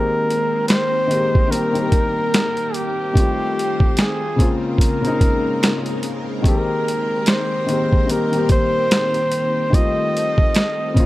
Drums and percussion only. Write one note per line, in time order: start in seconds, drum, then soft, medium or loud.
0.30 closed hi-hat medium
0.68 finger snap medium
0.68 snare loud
0.68 closed hi-hat medium
1.11 closed hi-hat medium
1.35 kick medium
1.52 closed hi-hat medium
1.75 closed hi-hat soft
1.92 kick medium
1.92 closed hi-hat medium
2.34 finger snap medium
2.34 snare loud
2.34 closed hi-hat medium
2.57 closed hi-hat soft
2.74 closed hi-hat medium
3.15 kick loud
3.15 closed hi-hat medium
3.59 closed hi-hat medium
3.80 kick medium
3.97 finger snap medium
3.97 snare loud
3.97 closed hi-hat medium
4.39 kick medium
4.39 closed hi-hat medium
4.78 kick medium
4.78 closed hi-hat medium
5.05 closed hi-hat soft
5.21 kick medium
5.21 closed hi-hat medium
5.63 finger snap medium
5.63 snare loud
5.63 closed hi-hat medium
5.86 closed hi-hat soft
6.03 closed hi-hat medium
6.44 kick loud
6.44 closed hi-hat medium
6.88 closed hi-hat medium
7.26 finger snap medium
7.26 snare loud
7.26 closed hi-hat medium
7.69 closed hi-hat medium
7.93 kick medium
8.09 closed hi-hat medium
8.33 closed hi-hat soft
8.49 kick medium
8.49 closed hi-hat medium
8.91 finger snap medium
8.91 snare loud
8.91 closed hi-hat medium
9.14 closed hi-hat soft
9.32 closed hi-hat medium
9.73 kick loud
9.73 closed hi-hat medium
10.17 closed hi-hat medium
10.38 kick medium
10.55 finger snap medium
10.55 snare loud
10.55 closed hi-hat medium
10.97 kick medium
10.97 closed hi-hat medium